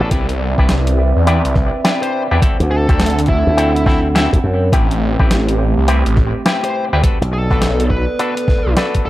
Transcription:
0.00 slap bass A1, clav D4 F#4 A4 B4, lead electric guitar A4
0.11 detuned saw bass C2, analog synth pad C4 B4 D5 E5, clav D4 E4 G4 B4, kick, closed hi-hat
0.29 closed hi-hat
0.58 detuned saw bass C2, clav D4 E4 G4 B4, kick
0.69 snare, closed hi-hat
0.87 closed hi-hat
1.16 detuned saw bass E2
1.27 clav D4 E4 G4 B4, closed hi-hat
1.45 detuned saw bass C2, closed hi-hat
1.55 kick, snare
1.84 clav D4 E4 G4 B4, snare, closed hi-hat
2.02 lead electric guitar C5, closed hi-hat
2.31 detuned saw bass E2, clav D4 E4 G4 B4
2.42 analog synth pad C4 D4 F#5, clav C4 E4 F#4 A4, kick, closed hi-hat
2.60 slap bass D2, closed hi-hat
2.71 lead electric guitar A4
2.89 detuned saw bass D2, clav C4 E4 F#4 A4, kick, snare, closed hi-hat
3.00 snare, closed hi-hat
3.06 closed hi-hat
3.10 closed hi-hat
3.19 closed hi-hat
3.26 lead electric guitar E4, kick, closed hi-hat
3.47 slap bass D2
3.57 clav C4 E4 F#4 A4, closed hi-hat
3.76 lead electric guitar E4, closed hi-hat
3.86 clav C4 E4 F#4 A4, lead electric guitar E4, kick, snare
4.15 clav C4 E4 F#4 A4, snare, closed hi-hat
4.33 slap bass D2, kick, closed hi-hat
4.44 slap bass F#2
4.72 detuned saw bass A1, analog synth pad A3 G4, clav C4 E4 G4 B4, kick, closed hi-hat
4.91 closed hi-hat
5.19 detuned saw bass A1, clav C4 E4 G4 B4, kick
5.31 snare, closed hi-hat
5.49 closed hi-hat
5.77 detuned saw bass C2
5.88 clav C4 E4 G4 B4, closed hi-hat
6.06 detuned saw bass A1, closed hi-hat
6.17 kick, snare
6.46 clav C4 E4 G4 B4, snare, closed hi-hat
6.64 lead electric guitar C5, closed hi-hat
6.93 detuned saw bass D2, clav C4 E4 G4 B4
7.03 analog synth pad B3 A4 D5, clav D4 F#4 A4 B4, kick, closed hi-hat
7.21 slap bass B1, closed hi-hat
7.33 lead electric guitar A4
7.50 detuned saw bass B1, clav D4 F#4 A4 B4, kick, snare
7.62 snare, closed hi-hat
7.80 closed hi-hat
7.90 lead electric guitar B4, kick
8.19 clav D4 F#4 A4 B4, closed hi-hat
8.37 closed hi-hat
8.48 kick, snare
8.66 detuned saw bass B1
8.77 clav D4 F#4 A4 B4, snare, closed hi-hat
8.95 kick, closed hi-hat
9.06 detuned saw bass B1, lead electric guitar A4

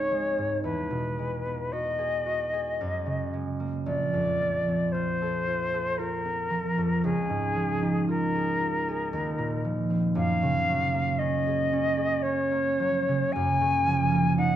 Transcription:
Already playing: harp C#2 G#2 G#3 C4 D#4 F4 G#4, flute C#5
0.12 harp G#3
0.38 harp G#2
0.64 harp E2, flute B4
0.90 harp B2
1.19 harp G#3
1.46 harp B3
1.72 harp F#4, flute D#5
1.99 harp G#4
2.26 harp F#4
2.53 harp G#4
2.81 harp F#2
3.06 harp C#3
3.34 harp G#3
3.60 harp A#3
3.86 harp A#1, flute D5
4.13 harp F2
4.42 harp F3
4.69 harp C4
4.92 harp F4, flute C5
5.22 harp A4
5.47 harp F4
5.74 harp A4
5.98 harp F4, flute A#4
6.25 harp C4
6.50 harp F3
6.78 harp F2
7.04 harp C#2, flute G#4
7.30 harp G#2
7.56 harp F3
7.82 harp D#4
8.09 harp F4, flute A#4
8.35 harp G#4
8.61 harp F4
8.88 harp G#4
9.13 harp D#2
9.38 harp A#2
9.65 harp F3
9.90 harp C4
10.15 harp F#2, flute F5
10.42 harp C#3
10.69 harp F#3
10.94 harp A#3
11.19 harp C#4, flute D#5
11.47 harp G#4
11.73 harp C#4
11.97 harp G#4
12.22 harp C#4, flute C#5
12.51 harp A#3
12.80 harp F#3
13.09 harp C#3
13.32 harp F#2, flute G#5
13.61 harp C#3
13.86 harp F3
14.12 harp A#3
14.38 harp D#4, flute F#5

